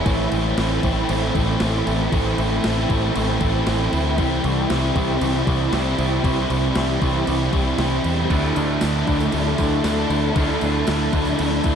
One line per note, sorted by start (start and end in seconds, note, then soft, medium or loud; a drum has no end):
0.00 4.15 E4 medium
0.05 0.26 A1 loud
0.05 1.08 A2 medium
0.05 0.57 E3 medium
0.05 0.34 A3 medium
0.05 0.32 C4 loud
0.05 0.31 E4 loud
0.05 4.14 A4 medium
0.05 8.26 C5 medium
0.05 8.26 G5 medium
0.05 kick loud
0.05 crash medium
0.31 0.52 A1 medium
0.31 0.58 A3 medium
0.31 0.59 C4 medium
0.31 0.60 E4 medium
0.31 crash medium
0.57 0.78 A1 medium
0.57 1.09 E3 medium
0.57 0.86 A3 medium
0.57 0.85 C4 medium
0.57 0.83 E4 medium
0.57 snare loud
0.57 crash loud
0.83 1.04 A1 medium
0.83 1.09 A3 medium
0.83 1.10 C4 medium
0.83 1.11 E4 medium
0.83 kick medium
0.83 crash medium
1.09 1.30 A1 medium
1.09 1.61 A2 loud
1.09 1.60 E3 loud
1.09 1.37 A3 loud
1.09 1.36 C4 loud
1.09 1.34 E4 loud
1.09 crash medium
1.35 1.55 A1 medium
1.35 1.61 A3 medium
1.35 1.62 C4 medium
1.35 1.63 E4 medium
1.35 kick medium
1.35 crash medium
1.60 1.81 A1 loud
1.60 2.13 E3 medium
1.60 1.88 A3 medium
1.60 1.88 C4 medium
1.60 1.86 E4 medium
1.60 snare loud
1.60 crash medium
1.87 2.07 A1 medium
1.87 2.13 A3 medium
1.87 2.15 C4 medium
1.87 2.15 E4 medium
1.87 crash medium
2.12 2.33 A1 loud
2.12 2.64 A2 medium
2.12 2.63 E3 loud
2.12 2.40 A3 loud
2.12 2.39 C4 loud
2.12 2.38 E4 loud
2.12 kick loud
2.12 crash medium
2.38 2.58 A1 loud
2.38 2.64 A3 medium
2.38 2.65 C4 medium
2.38 2.66 E4 medium
2.38 crash medium
2.63 2.85 A1 medium
2.63 3.15 E3 medium
2.63 2.91 A3 medium
2.63 2.90 C4 medium
2.63 2.89 E4 medium
2.63 snare loud
2.63 crash medium
2.89 3.10 A1 medium
2.89 3.15 A3 medium
2.89 3.17 C4 medium
2.89 3.18 E4 medium
2.89 kick medium
2.89 crash medium
3.15 3.36 A1 medium
3.15 3.67 A2 loud
3.15 3.66 E3 loud
3.15 3.42 A3 loud
3.15 3.41 C4 loud
3.15 3.40 E4 loud
3.15 crash medium
3.41 3.62 A1 medium
3.41 3.66 A3 medium
3.41 3.68 C4 medium
3.41 3.69 E4 medium
3.41 kick medium
3.41 crash medium
3.66 3.87 A1 loud
3.66 4.19 E3 medium
3.66 3.94 A3 medium
3.66 3.94 C4 medium
3.66 3.92 E4 medium
3.66 snare loud
3.66 crash medium
3.92 4.19 D2 loud
3.92 4.18 A3 medium
3.92 4.20 C4 medium
3.92 4.21 E4 medium
3.92 crash medium
4.18 4.39 C2 loud
4.18 5.19 C3 medium
4.18 4.69 E3 medium
4.18 4.47 G3 loud
4.18 4.45 C4 loud
4.18 8.26 E4 medium
4.18 4.44 E4 loud
4.18 8.26 G4 medium
4.18 kick loud
4.18 crash medium
4.44 4.65 C2 loud
4.44 4.71 G3 medium
4.44 4.71 C4 medium
4.44 4.72 E4 medium
4.44 crash medium
4.70 4.90 C2 medium
4.70 5.21 E3 medium
4.70 4.97 G3 medium
4.70 4.96 C4 medium
4.70 4.95 E4 loud
4.70 snare loud
4.70 crash medium
4.95 5.16 C2 loud
4.95 5.20 G3 medium
4.95 5.21 C4 medium
4.95 5.23 E4 medium
4.95 kick medium
4.95 crash medium
5.20 5.42 C2 loud
5.20 5.72 C3 loud
5.20 5.70 E3 loud
5.20 5.48 G3 loud
5.20 5.46 C4 loud
5.20 5.45 E4 loud
5.20 crash medium
5.46 5.67 C2 loud
5.46 5.71 G3 medium
5.46 5.72 C4 medium
5.46 5.73 E4 medium
5.46 kick medium
5.46 crash medium
5.71 5.93 C2 loud
5.71 6.22 E3 medium
5.71 5.99 G3 medium
5.71 5.98 C4 medium
5.71 5.98 E4 loud
5.71 snare loud
5.71 crash medium
5.98 6.19 C2 medium
5.98 6.22 G3 medium
5.98 6.23 C4 medium
5.98 6.25 E4 medium
5.98 crash medium
6.22 6.45 C2 loud
6.22 6.75 C3 loud
6.22 6.74 E3 medium
6.22 6.50 G3 loud
6.22 6.49 C4 loud
6.22 6.48 E4 loud
6.22 kick loud
6.22 crash medium
6.49 6.70 C2 loud
6.49 6.74 G3 medium
6.49 6.75 C4 medium
6.49 6.77 E4 medium
6.49 crash medium
6.74 6.96 C2 medium
6.74 7.27 E3 medium
6.74 7.02 G3 medium
6.74 7.01 C4 medium
6.74 7.00 E4 medium
6.74 snare loud
6.74 crash loud
7.00 7.22 C2 medium
7.00 7.27 G3 medium
7.00 7.28 C4 medium
7.00 7.29 E4 medium
7.00 kick medium
7.00 crash medium
7.27 7.48 C2 medium
7.27 7.78 C3 loud
7.27 7.78 E3 loud
7.27 7.54 G3 loud
7.27 7.53 C4 loud
7.27 7.52 E4 loud
7.27 crash medium
7.52 7.73 C2 loud
7.52 7.78 G3 medium
7.52 7.79 C4 medium
7.52 7.81 E4 medium
7.52 kick medium
7.52 crash medium
7.78 7.99 C2 loud
7.78 8.29 E3 medium
7.78 8.06 G3 medium
7.78 8.05 C4 medium
7.78 8.04 E4 medium
7.78 snare loud
7.78 crash medium
8.04 8.25 E2 medium
8.04 8.30 G3 medium
8.04 8.29 C4 medium
8.04 8.32 E4 medium
8.04 crash medium
8.30 8.50 D2 loud
8.30 8.81 D3 medium
8.30 8.58 A3 loud
8.30 8.56 D4 medium
8.30 11.75 E4 medium
8.30 8.55 E4 loud
8.30 11.75 A4 medium
8.30 11.75 D5 medium
8.30 11.75 A5 medium
8.30 kick loud
8.30 crash medium
8.44 tambourine soft
8.55 8.77 D2 loud
8.55 8.82 A3 medium
8.55 8.83 D4 medium
8.55 8.84 E4 medium
8.55 tambourine medium
8.55 crash medium
8.81 9.02 D2 medium
8.81 9.32 D3 medium
8.81 9.10 A3 medium
8.81 9.09 D4 medium
8.81 9.07 E4 medium
8.81 snare loud
8.81 tambourine loud
8.81 crash medium
9.07 9.27 D2 medium
9.07 9.33 A3 medium
9.07 9.34 D4 medium
9.07 9.36 E4 medium
9.07 kick medium
9.07 tambourine soft
9.07 crash medium
9.20 tambourine medium
9.32 9.53 D2 medium
9.32 9.83 D3 loud
9.32 9.60 A3 loud
9.32 9.59 D4 loud
9.32 9.58 E4 loud
9.32 crash medium
9.47 tambourine soft
9.58 9.79 D2 medium
9.58 9.84 A3 medium
9.58 9.86 D4 medium
9.58 9.87 E4 medium
9.58 kick medium
9.58 tambourine medium
9.58 crash medium
9.72 tambourine soft
9.84 10.05 D2 loud
9.84 10.34 D3 medium
9.84 10.12 A3 medium
9.84 10.11 D4 medium
9.84 10.09 E4 medium
9.84 snare loud
9.84 tambourine medium
9.84 crash medium
9.98 tambourine soft
10.10 10.30 D2 medium
10.10 10.35 A3 medium
10.10 10.37 D4 medium
10.10 10.38 E4 medium
10.10 crash medium
10.35 10.56 D2 loud
10.35 10.85 D3 medium
10.35 10.63 A3 loud
10.35 10.62 D4 loud
10.35 10.61 E4 loud
10.35 kick loud
10.35 crash medium
10.49 tambourine soft
10.61 10.82 D2 loud
10.61 10.86 A3 medium
10.61 10.88 D4 medium
10.61 10.89 E4 medium
10.61 tambourine medium
10.61 crash medium
10.74 tambourine soft
10.86 11.08 D2 medium
10.86 11.36 D3 medium
10.86 11.14 A3 medium
10.86 11.14 D4 medium
10.86 11.12 E4 medium
10.86 snare loud
10.86 tambourine medium
10.86 crash loud
11.00 tambourine soft
11.12 11.33 D2 loud
11.12 11.38 A3 medium
11.12 11.39 D4 medium
11.12 11.40 E4 medium
11.12 kick medium
11.12 tambourine soft
11.12 crash medium
11.25 tambourine medium
11.37 11.59 D2 medium
11.37 11.75 D3 loud
11.37 11.66 A3 loud
11.37 11.65 D4 loud
11.37 11.64 E4 loud
11.37 crash loud
11.51 tambourine soft
11.64 11.75 D2 medium
11.64 11.75 A3 medium
11.64 11.75 D4 medium
11.64 11.75 E4 medium
11.64 kick medium
11.64 tambourine medium
11.64 crash medium